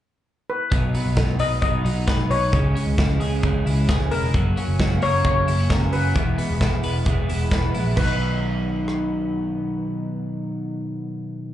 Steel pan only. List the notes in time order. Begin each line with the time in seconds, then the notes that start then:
0.50 B4
1.40 D#5
1.62 D#5
2.31 C#5
4.11 A#4
5.03 C#5
5.25 C#5
5.93 B4
7.97 B4